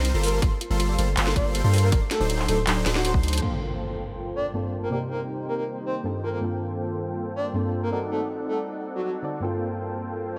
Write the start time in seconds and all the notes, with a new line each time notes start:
Already playing: C2 G3 C4 D#4 A#4 C5 C6
0.05 G4, closed hi-hat
0.14 G1 G3 A#3 F4 A4 C5 A#5 C6
0.23 F4 A#4, open hi-hat
0.28 closed hi-hat
0.33 A4 A#4
0.42 G1 G3 A#3 F4 A4 C5 C6, kick, closed hi-hat
0.52 A#4
0.61 F4, closed hi-hat
0.70 G1 G3 A#3 F4 A4 A#4 C5 C6
0.80 F4, closed hi-hat
0.89 D5
0.98 G1 G3 A#3 F4 A4 C5 C6, closed hi-hat
1.08 A4
1.17 G1 G3 A#3 F4 A4 C5 C6, clap, closed hi-hat
1.27 A#4, snare
1.36 G1 G3 A#3 F4 A4 C5 D5 C6, kick, closed hi-hat
1.46 A#4
1.55 F4, closed hi-hat
1.64 G2 G3 A#3 F4 A4 C5 D5 C6
1.74 F4, open hi-hat
1.78 closed hi-hat
1.83 A4 A#4
1.92 D1 F#3 D4 D#4 F#4 A4 A#4 C5, kick, closed hi-hat
2.02 D5
2.11 F#4 A4, snare, closed hi-hat
2.20 D1 F#3 D4 D#4 A4 C5 D5 C6
2.30 F#4, closed hi-hat
2.39 F#5, clap
2.48 D1 F#3 D4 D#4 F#4 A4 C5 C6, closed hi-hat
2.58 C5
2.67 D1 F#3 D4 D#4 F#4 A4 C5 C6, clap, closed hi-hat
2.77 D5
2.86 D1 F#3 D4 D#4 F#4 A4 C5 C6, snare, closed hi-hat
2.95 F#4 D5, snare
3.05 F#4, closed hi-hat
3.14 D2 F#3 D4 D#4 A4 C5 F#5 C6, kick
3.23 F#4, closed hi-hat
3.28 closed hi-hat
3.33 C5, closed hi-hat
3.38 G2 A#3, closed hi-hat
3.42 A#3 C4 D4 F4 A4 C5 G5, crash, impact
4.36 D5
4.54 G2 A#3 C4 D4 F4 A4
4.83 A#4
4.90 C3 A#3 D#4 G4 A#4 C5 D5 G5
5.11 A#4
5.48 A#4
5.58 A#4
5.86 C5
6.04 G2 A#3 C4 D4 F4 A4
6.23 G3 A#3 C4 F4 A4 A#4 C5 G5
6.33 A#4
6.40 G2 A#3 C4 D4 F4
6.44 A4
7.36 D5
7.54 G2 A#3 C4 D4 F4 A4
7.83 A#4
7.91 C4 D#4 F#4 A4 A#4 D5 F#5
8.11 A4
8.48 A4
8.95 F#4
9.05 F#4
9.22 D3 C4 D#4 F#4 D5
9.40 G2 A#3 C4 D4 F4 A4 C5 G5
9.44 A4